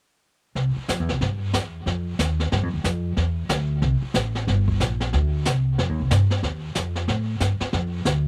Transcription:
0.55 upright bass C2, brush sweep, snare
0.76 muted upright bass stroke
0.88 upright bass F2, snare, hi-hat pedal
1.00 upright bass E2
1.09 upright bass C2, snare
1.21 upright bass G2, brush sweep, snare
1.53 upright bass E2, snare, hi-hat pedal
1.86 upright bass F2, brush sweep, snare
2.19 upright bass D#2, snare, hi-hat pedal
2.40 snare
2.52 upright bass G2, brush sweep, snare
2.63 upright bass F2
2.74 upright bass D#2
2.84 upright bass F2, snare, hi-hat pedal
3.17 upright bass E2, brush sweep, snare
3.49 upright bass D2, snare, hi-hat pedal
3.82 upright bass C2, brush sweep, snare
4.02 muted upright bass stroke
4.14 upright bass A1, snare, hi-hat pedal
4.35 snare
4.47 upright bass G1, brush sweep, snare
4.68 kick
4.80 upright bass A#1, snare, hi-hat pedal
5.00 snare
5.13 upright bass D2, brush sweep, snare
5.45 upright bass C2, snare, hi-hat pedal
5.78 upright bass F2, brush sweep, snare
5.89 upright bass D#2
6.00 upright bass C2
6.10 upright bass G2, snare, hi-hat pedal
6.30 snare
6.43 upright bass D#2, brush sweep, snare
6.75 upright bass F2, snare, hi-hat pedal
6.96 snare
7.08 upright bass A2, brush sweep, snare
7.40 upright bass G2, snare, hi-hat pedal
7.60 muted upright bass stroke, snare
7.73 upright bass F2, brush sweep, snare
8.05 upright bass D2, snare, hi-hat pedal

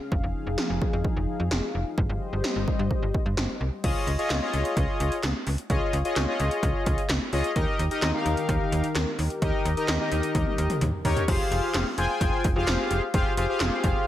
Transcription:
Already playing: analog synth pad C#3 C#4 F5
0.12 fm bass F1, analog synth pad F3 D#4 G#4, kick
0.23 fm bass F1
0.47 fm bass F1
0.58 snare
0.70 fm bass F1
0.82 kick
0.93 fm bass F2
1.04 kick
1.17 fm bass F1
1.40 fm bass F2
1.51 fm bass F1, snare
1.75 fm bass F1
1.98 fm bass G1, analog synth pad G3 G4 C5 D#5, kick
2.09 fm bass G1
2.33 fm bass G1
2.44 snare
2.56 fm bass G1
2.68 kick
2.79 fm bass G2
2.91 kick
3.02 fm bass G1
3.14 kick
3.26 fm bass G2
3.37 fm bass G1, snare
3.61 fm bass C2
3.84 fm bass C#2, analog polysynth F4 G#4 C#5 D#5, kick, closed hi-hat, crash
4.07 fm bass C#2, closed hi-hat
4.19 analog polysynth F4 G#4 C#5 D#5, closed hi-hat
4.30 fm bass C#2, snare, clap, closed hi-hat
4.42 analog polysynth F4 G#4 C#5 D#5
4.54 fm bass C#2, closed hi-hat
4.65 closed hi-hat
4.77 fm bass C#2, kick, closed hi-hat
5.00 fm bass C#2, closed hi-hat
5.12 closed hi-hat
5.23 fm bass C#2, snare, clap, closed hi-hat
5.47 fm bass C#2, open hi-hat
5.58 closed hi-hat
5.70 fm bass C#2, analog polysynth F4 G#4 C#5 D#5, kick, closed hi-hat
5.93 fm bass C#2, closed hi-hat
6.05 analog polysynth F4 G#4 C#5 D#5, closed hi-hat
6.16 fm bass C#2, snare, clap, closed hi-hat
6.28 analog polysynth F4 G#4 C#5 D#5
6.40 fm bass C#2, closed hi-hat
6.51 closed hi-hat
6.63 fm bass C#2, kick, closed hi-hat
6.86 fm bass C#2, kick, closed hi-hat
6.98 closed hi-hat
7.09 fm bass C#2, snare, clap, closed hi-hat
7.33 fm bass C#2, analog polysynth F4 G#4 C#5 D#5, open hi-hat
7.44 closed hi-hat
7.56 fm bass D#2, analog synth pad D#3 D#4 G4 A#4, analog polysynth D#4 G4 A#4 D#5, kick, closed hi-hat
7.79 fm bass D#2, closed hi-hat
7.91 analog polysynth D#4 G4 A#4 D#5, closed hi-hat
8.02 fm bass D#2, snare, clap, closed hi-hat
8.14 analog polysynth D#4 G4 A#4 F5
8.26 fm bass D#2, closed hi-hat
8.37 closed hi-hat
8.49 fm bass D#2, kick, closed hi-hat
8.72 fm bass D#2, closed hi-hat
8.84 closed hi-hat
8.95 fm bass D#2, snare, clap, closed hi-hat
9.19 fm bass D#2, open hi-hat
9.30 closed hi-hat
9.42 fm bass D#2, analog polysynth D#4 G4 A#4 D#5, kick, closed hi-hat
9.65 fm bass D#2, closed hi-hat
9.77 analog polysynth D#4 G4 A#4 D#5, closed hi-hat
9.88 fm bass D#2, snare, clap, closed hi-hat
10.01 analog polysynth D#4 G4 A#4 D#5
10.12 fm bass D#2, closed hi-hat
10.23 closed hi-hat
10.35 fm bass D#2, kick, closed hi-hat, high tom
10.47 high tom
10.58 fm bass D#2, closed hi-hat
10.70 closed hi-hat, mid tom
10.81 fm bass D#2, closed hi-hat, mid tom
11.05 fm bass D#2, analog polysynth D#4 G4 A#4 C#5, floor tom, open hi-hat
11.17 closed hi-hat, floor tom
11.28 fm bass F1, analog polysynth F4 G4 G#4 C5 F5, kick, closed hi-hat, crash
11.51 fm bass F1, closed hi-hat
11.74 fm bass F1, snare, clap, closed hi-hat
11.98 fm bass F1, analog polysynth F4 G#4 C5 G5 G#5, closed hi-hat
12.21 fm bass F1, kick, closed hi-hat
12.44 fm bass F1, kick, closed hi-hat
12.56 fm bass F1, analog polysynth F4 G4 G#4 C5 F5
12.67 fm bass F1, snare, clap, closed hi-hat
12.91 fm bass F1, closed hi-hat
13.14 fm bass F1, analog polysynth F4 G4 G#4 C5 F5, kick, closed hi-hat
13.37 fm bass F1, analog polysynth F4 G4 G#4 C5 F5, closed hi-hat
13.49 analog polysynth F4 G4 G#4 C5 F5
13.60 fm bass F1, snare, clap, closed hi-hat
13.84 fm bass F1, kick, closed hi-hat

